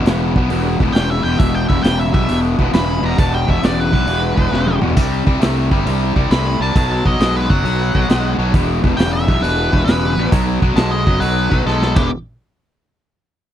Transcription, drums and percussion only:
0.06 snare, open hi-hat
0.36 kick
0.50 open hi-hat
0.80 kick
0.95 snare, open hi-hat
1.33 snare
1.39 kick, open hi-hat
1.70 kick
1.84 snare, open hi-hat
2.14 kick
2.29 open hi-hat
2.59 kick
2.73 snare, open hi-hat
3.12 snare
3.18 kick, open hi-hat
3.48 kick
3.63 snare, open hi-hat
3.93 kick
4.07 open hi-hat
4.37 kick
4.53 snare
4.67 high tom
4.81 mid tom
4.89 floor tom
4.97 kick, open hi-hat, splash
5.27 kick
5.41 snare, open hi-hat
5.71 kick
5.87 open hi-hat
6.16 kick
6.31 snare, open hi-hat
6.70 snare
6.76 kick, open hi-hat
7.05 kick
7.20 snare, open hi-hat
7.50 kick
7.66 open hi-hat
7.95 kick
8.09 snare, open hi-hat
8.54 kick, open hi-hat
8.84 kick
8.99 snare, open hi-hat
9.28 kick
9.44 open hi-hat
9.73 kick
9.88 snare, open hi-hat
10.26 snare
10.32 kick, open hi-hat
10.62 kick
10.76 snare, open hi-hat
11.07 kick
11.22 open hi-hat
11.52 kick
11.68 snare
11.82 snare
11.96 kick, crash

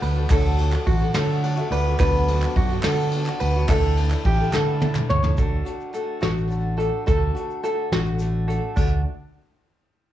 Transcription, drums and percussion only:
0.02 ride, shaker
0.30 kick, clap, ride, shaker
0.44 shaker
0.58 ride, shaker
0.71 clap, shaker
0.87 kick, ride
1.01 shaker
1.14 snare, clap, ride, shaker
1.29 shaker
1.43 ride
1.56 shaker
1.71 ride, shaker
1.98 kick, clap, ride, shaker
2.13 shaker
2.28 ride, shaker
2.41 clap, shaker
2.56 kick, ride
2.70 shaker
2.83 snare, clap, ride, shaker
2.98 shaker
3.11 ride
3.26 clap, shaker
3.40 ride, shaker
3.68 kick, clap, ride, shaker
3.83 clap, shaker
3.97 clap, ride
4.10 clap, shaker
4.24 kick, ride, shaker
4.53 snare, clap, shaker
4.81 high tom
4.95 clap, mid tom, shaker
5.10 mid tom
5.24 clap, floor tom
5.37 kick, closed hi-hat, shaker
5.66 closed hi-hat, shaker
5.80 shaker
5.94 closed hi-hat, shaker
6.23 snare, closed hi-hat
6.38 shaker
6.51 closed hi-hat, shaker
6.80 closed hi-hat
7.08 kick, closed hi-hat, shaker
7.36 closed hi-hat, shaker
7.50 shaker
7.65 closed hi-hat, shaker
7.93 snare, closed hi-hat
8.06 shaker
8.19 closed hi-hat, shaker
8.50 closed hi-hat
8.77 kick, crash, shaker

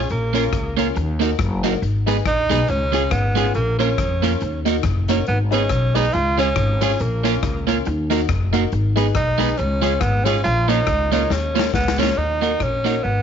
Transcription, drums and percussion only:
0.09 closed hi-hat
0.35 closed hi-hat, tambourine
0.53 kick, cross-stick, closed hi-hat
0.78 closed hi-hat, tambourine
0.96 closed hi-hat
1.21 closed hi-hat, tambourine
1.39 kick, cross-stick, closed hi-hat
1.64 closed hi-hat, tambourine
1.83 closed hi-hat
2.08 closed hi-hat, tambourine
2.25 kick, cross-stick, closed hi-hat
2.50 closed hi-hat, tambourine
2.68 closed hi-hat
2.93 closed hi-hat, tambourine
3.11 kick, cross-stick, closed hi-hat
3.36 closed hi-hat, tambourine
3.55 closed hi-hat
3.80 closed hi-hat, tambourine
3.98 kick, cross-stick, closed hi-hat
4.23 closed hi-hat, tambourine
4.41 closed hi-hat
4.66 closed hi-hat, tambourine
4.83 kick, cross-stick, closed hi-hat
5.08 closed hi-hat, tambourine
5.26 closed hi-hat
5.52 closed hi-hat, tambourine
5.69 kick, cross-stick, closed hi-hat
5.95 closed hi-hat, tambourine
6.13 closed hi-hat
6.39 closed hi-hat, tambourine
6.56 kick, cross-stick, closed hi-hat
6.81 closed hi-hat, tambourine
6.99 closed hi-hat
7.25 closed hi-hat, tambourine
7.43 kick, cross-stick, closed hi-hat
7.68 closed hi-hat, tambourine
7.85 closed hi-hat
8.11 closed hi-hat, tambourine
8.29 kick, cross-stick, closed hi-hat
8.53 closed hi-hat, tambourine
8.72 closed hi-hat
8.97 closed hi-hat, tambourine
9.15 kick, cross-stick, closed hi-hat
9.40 closed hi-hat, tambourine
9.57 closed hi-hat
9.83 closed hi-hat, tambourine
10.01 kick, cross-stick, closed hi-hat
10.26 closed hi-hat, tambourine
10.44 closed hi-hat
10.69 closed hi-hat, tambourine
10.87 kick, cross-stick, closed hi-hat
11.12 closed hi-hat, tambourine
11.30 snare
11.56 snare, tambourine
11.74 kick, snare
11.88 snare
11.99 snare, tambourine
12.42 closed hi-hat
12.60 kick, cross-stick
12.86 closed hi-hat

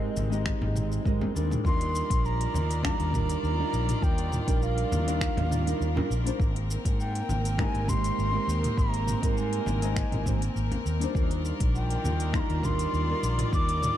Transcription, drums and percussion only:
0.16 high conga, low conga, shaker
0.32 shaker
0.46 finger snap, kick, shaker
0.62 mid tom, low conga
0.75 mid tom, shaker
0.92 shaker
1.05 kick, high tom, shaker
1.21 high tom, low conga
1.36 shaker
1.51 mid tom, shaker
1.65 kick, shaker
1.81 closed hi-hat
1.95 shaker
2.10 kick, closed hi-hat, shaker
2.25 shaker
2.41 closed hi-hat
2.54 high conga, low conga, shaker
2.71 closed hi-hat, shaker
2.84 finger snap, kick, low conga, shaker
3.00 closed hi-hat
3.13 kick, mid tom, shaker
3.29 closed hi-hat, shaker
3.44 shaker
3.74 shaker
3.89 closed hi-hat, mid tom, shaker
4.02 kick, shaker
4.18 closed hi-hat
4.32 mid tom, shaker
4.48 kick, closed hi-hat, shaker
4.62 shaker
4.78 closed hi-hat
4.92 high conga, low conga, shaker
5.08 closed hi-hat, shaker
5.21 finger snap, kick, shaker
5.37 closed hi-hat, mid tom, low conga
5.51 mid tom, shaker
5.67 closed hi-hat, shaker
5.82 shaker
5.97 low conga
6.11 shaker
6.26 closed hi-hat, shaker
6.40 kick, shaker
6.56 closed hi-hat
6.71 shaker
6.85 kick, closed hi-hat, shaker
7.00 shaker
7.15 closed hi-hat
7.29 high conga, low conga, shaker
7.45 closed hi-hat, shaker
7.58 finger snap, kick, low conga, shaker
7.75 closed hi-hat
7.88 kick, mid tom, shaker
8.04 closed hi-hat, shaker
8.19 shaker
8.49 shaker
8.64 closed hi-hat, mid tom, shaker
8.77 kick, shaker
8.94 closed hi-hat
9.07 mid tom, shaker
9.23 kick, closed hi-hat, shaker
9.37 shaker
9.53 closed hi-hat
9.66 high conga, low conga, shaker
9.82 closed hi-hat, shaker
9.96 finger snap, kick, shaker
10.12 closed hi-hat, mid tom, low conga
10.26 kick, mid tom, shaker
10.42 closed hi-hat, shaker
10.57 shaker
10.71 closed hi-hat, low conga
10.86 shaker
11.01 closed hi-hat, shaker
11.15 kick, shaker
11.31 closed hi-hat
11.45 shaker
11.60 kick, closed hi-hat, shaker
11.75 shaker
11.90 closed hi-hat
12.04 high conga, low conga, shaker
12.20 closed hi-hat, shaker
12.33 finger snap, kick, low conga, shaker
12.50 closed hi-hat
12.63 kick, mid tom, shaker
12.79 closed hi-hat, shaker
12.94 shaker
13.23 shaker
13.39 closed hi-hat, mid tom, shaker
13.53 kick, shaker
13.69 closed hi-hat
13.82 mid tom, shaker

